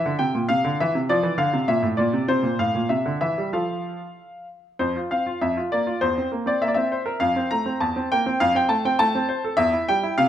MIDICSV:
0, 0, Header, 1, 2, 480
1, 0, Start_track
1, 0, Key_signature, -1, "major"
1, 0, Tempo, 599401
1, 870, Time_signature, 2, 2, 24, 8
1, 2316, Tempo, 628931
1, 4236, Tempo, 594648
1, 8173, End_track
2, 0, Start_track
2, 0, Title_t, "Grand piano"
2, 0, Program_c, 0, 0
2, 0, Note_on_c, 0, 76, 73
2, 45, Note_on_c, 0, 50, 52
2, 125, Note_off_c, 0, 76, 0
2, 150, Note_on_c, 0, 79, 65
2, 152, Note_on_c, 0, 48, 56
2, 153, Note_off_c, 0, 50, 0
2, 266, Note_off_c, 0, 48, 0
2, 276, Note_on_c, 0, 46, 55
2, 294, Note_off_c, 0, 79, 0
2, 388, Note_off_c, 0, 46, 0
2, 389, Note_on_c, 0, 77, 76
2, 397, Note_on_c, 0, 48, 54
2, 508, Note_off_c, 0, 48, 0
2, 516, Note_on_c, 0, 50, 56
2, 605, Note_off_c, 0, 77, 0
2, 627, Note_off_c, 0, 50, 0
2, 644, Note_on_c, 0, 76, 76
2, 649, Note_on_c, 0, 52, 61
2, 754, Note_off_c, 0, 52, 0
2, 760, Note_on_c, 0, 48, 56
2, 784, Note_off_c, 0, 76, 0
2, 869, Note_off_c, 0, 48, 0
2, 876, Note_on_c, 0, 74, 76
2, 878, Note_on_c, 0, 53, 66
2, 987, Note_on_c, 0, 52, 51
2, 988, Note_off_c, 0, 53, 0
2, 1088, Note_off_c, 0, 74, 0
2, 1101, Note_off_c, 0, 52, 0
2, 1103, Note_on_c, 0, 50, 55
2, 1104, Note_on_c, 0, 77, 72
2, 1218, Note_off_c, 0, 50, 0
2, 1227, Note_on_c, 0, 48, 59
2, 1340, Note_off_c, 0, 48, 0
2, 1344, Note_off_c, 0, 77, 0
2, 1345, Note_on_c, 0, 76, 76
2, 1346, Note_on_c, 0, 46, 59
2, 1459, Note_off_c, 0, 46, 0
2, 1461, Note_on_c, 0, 45, 57
2, 1489, Note_off_c, 0, 76, 0
2, 1577, Note_off_c, 0, 45, 0
2, 1578, Note_on_c, 0, 74, 67
2, 1586, Note_on_c, 0, 46, 65
2, 1700, Note_off_c, 0, 46, 0
2, 1709, Note_on_c, 0, 48, 57
2, 1817, Note_off_c, 0, 48, 0
2, 1823, Note_off_c, 0, 74, 0
2, 1829, Note_on_c, 0, 48, 61
2, 1829, Note_on_c, 0, 72, 72
2, 1943, Note_off_c, 0, 48, 0
2, 1944, Note_on_c, 0, 46, 56
2, 2062, Note_off_c, 0, 46, 0
2, 2071, Note_off_c, 0, 72, 0
2, 2075, Note_on_c, 0, 45, 49
2, 2075, Note_on_c, 0, 77, 67
2, 2189, Note_off_c, 0, 45, 0
2, 2200, Note_on_c, 0, 46, 53
2, 2313, Note_off_c, 0, 46, 0
2, 2316, Note_on_c, 0, 76, 60
2, 2317, Note_off_c, 0, 77, 0
2, 2322, Note_on_c, 0, 48, 47
2, 2430, Note_off_c, 0, 48, 0
2, 2441, Note_on_c, 0, 50, 50
2, 2528, Note_off_c, 0, 76, 0
2, 2550, Note_off_c, 0, 50, 0
2, 2557, Note_on_c, 0, 76, 65
2, 2560, Note_on_c, 0, 52, 47
2, 2670, Note_off_c, 0, 52, 0
2, 2687, Note_on_c, 0, 55, 44
2, 2772, Note_off_c, 0, 76, 0
2, 2795, Note_off_c, 0, 55, 0
2, 2801, Note_on_c, 0, 53, 43
2, 2803, Note_on_c, 0, 69, 35
2, 2804, Note_on_c, 0, 65, 36
2, 2804, Note_on_c, 0, 77, 55
2, 3139, Note_off_c, 0, 53, 0
2, 3189, Note_off_c, 0, 65, 0
2, 3189, Note_off_c, 0, 69, 0
2, 3500, Note_off_c, 0, 77, 0
2, 3767, Note_on_c, 0, 41, 53
2, 3767, Note_on_c, 0, 72, 61
2, 3882, Note_off_c, 0, 41, 0
2, 3897, Note_on_c, 0, 65, 38
2, 3909, Note_off_c, 0, 72, 0
2, 4008, Note_on_c, 0, 77, 59
2, 4013, Note_on_c, 0, 60, 34
2, 4015, Note_off_c, 0, 65, 0
2, 4127, Note_on_c, 0, 65, 40
2, 4131, Note_off_c, 0, 60, 0
2, 4215, Note_off_c, 0, 77, 0
2, 4239, Note_off_c, 0, 65, 0
2, 4241, Note_on_c, 0, 76, 63
2, 4242, Note_on_c, 0, 41, 54
2, 4357, Note_off_c, 0, 41, 0
2, 4368, Note_on_c, 0, 65, 42
2, 4386, Note_off_c, 0, 76, 0
2, 4488, Note_on_c, 0, 58, 43
2, 4488, Note_on_c, 0, 74, 71
2, 4491, Note_off_c, 0, 65, 0
2, 4607, Note_on_c, 0, 65, 41
2, 4612, Note_off_c, 0, 58, 0
2, 4703, Note_off_c, 0, 74, 0
2, 4723, Note_on_c, 0, 72, 73
2, 4726, Note_off_c, 0, 65, 0
2, 4726, Note_on_c, 0, 40, 56
2, 4843, Note_off_c, 0, 40, 0
2, 4857, Note_on_c, 0, 60, 38
2, 4941, Note_off_c, 0, 72, 0
2, 4970, Note_on_c, 0, 58, 38
2, 4978, Note_off_c, 0, 60, 0
2, 5085, Note_on_c, 0, 60, 43
2, 5094, Note_on_c, 0, 74, 64
2, 5095, Note_off_c, 0, 58, 0
2, 5211, Note_off_c, 0, 74, 0
2, 5212, Note_off_c, 0, 60, 0
2, 5212, Note_on_c, 0, 58, 40
2, 5212, Note_on_c, 0, 76, 72
2, 5262, Note_on_c, 0, 74, 57
2, 5265, Note_off_c, 0, 76, 0
2, 5315, Note_on_c, 0, 76, 73
2, 5318, Note_off_c, 0, 74, 0
2, 5332, Note_on_c, 0, 60, 42
2, 5336, Note_off_c, 0, 58, 0
2, 5456, Note_off_c, 0, 60, 0
2, 5456, Note_on_c, 0, 72, 47
2, 5567, Note_on_c, 0, 70, 50
2, 5578, Note_off_c, 0, 72, 0
2, 5654, Note_off_c, 0, 76, 0
2, 5682, Note_on_c, 0, 77, 75
2, 5687, Note_on_c, 0, 41, 56
2, 5688, Note_off_c, 0, 70, 0
2, 5804, Note_off_c, 0, 41, 0
2, 5813, Note_on_c, 0, 60, 44
2, 5901, Note_off_c, 0, 77, 0
2, 5930, Note_on_c, 0, 82, 77
2, 5935, Note_on_c, 0, 57, 40
2, 5937, Note_off_c, 0, 60, 0
2, 6051, Note_on_c, 0, 60, 44
2, 6058, Note_off_c, 0, 57, 0
2, 6169, Note_off_c, 0, 82, 0
2, 6170, Note_off_c, 0, 60, 0
2, 6171, Note_on_c, 0, 40, 54
2, 6171, Note_on_c, 0, 81, 64
2, 6286, Note_off_c, 0, 40, 0
2, 6297, Note_on_c, 0, 60, 46
2, 6385, Note_off_c, 0, 81, 0
2, 6418, Note_off_c, 0, 60, 0
2, 6422, Note_on_c, 0, 79, 82
2, 6426, Note_on_c, 0, 58, 47
2, 6540, Note_on_c, 0, 60, 52
2, 6542, Note_off_c, 0, 58, 0
2, 6630, Note_off_c, 0, 79, 0
2, 6652, Note_off_c, 0, 60, 0
2, 6653, Note_on_c, 0, 77, 88
2, 6656, Note_on_c, 0, 41, 67
2, 6767, Note_off_c, 0, 41, 0
2, 6769, Note_off_c, 0, 77, 0
2, 6772, Note_on_c, 0, 60, 47
2, 6781, Note_on_c, 0, 79, 74
2, 6883, Note_on_c, 0, 57, 47
2, 6884, Note_on_c, 0, 81, 75
2, 6893, Note_off_c, 0, 79, 0
2, 6894, Note_off_c, 0, 60, 0
2, 7004, Note_off_c, 0, 81, 0
2, 7009, Note_off_c, 0, 57, 0
2, 7015, Note_on_c, 0, 60, 54
2, 7017, Note_on_c, 0, 79, 73
2, 7128, Note_on_c, 0, 81, 90
2, 7130, Note_off_c, 0, 79, 0
2, 7132, Note_on_c, 0, 57, 54
2, 7135, Note_off_c, 0, 60, 0
2, 7252, Note_off_c, 0, 57, 0
2, 7256, Note_on_c, 0, 60, 51
2, 7368, Note_on_c, 0, 72, 54
2, 7374, Note_off_c, 0, 60, 0
2, 7489, Note_off_c, 0, 72, 0
2, 7494, Note_on_c, 0, 69, 53
2, 7568, Note_off_c, 0, 81, 0
2, 7594, Note_on_c, 0, 76, 93
2, 7598, Note_on_c, 0, 40, 72
2, 7606, Note_off_c, 0, 69, 0
2, 7713, Note_off_c, 0, 40, 0
2, 7727, Note_on_c, 0, 64, 48
2, 7834, Note_off_c, 0, 76, 0
2, 7847, Note_off_c, 0, 64, 0
2, 7850, Note_on_c, 0, 79, 80
2, 7855, Note_on_c, 0, 55, 49
2, 7970, Note_on_c, 0, 64, 56
2, 7971, Note_off_c, 0, 55, 0
2, 8060, Note_off_c, 0, 79, 0
2, 8083, Note_off_c, 0, 64, 0
2, 8085, Note_on_c, 0, 77, 86
2, 8089, Note_on_c, 0, 48, 74
2, 8173, Note_off_c, 0, 48, 0
2, 8173, Note_off_c, 0, 77, 0
2, 8173, End_track
0, 0, End_of_file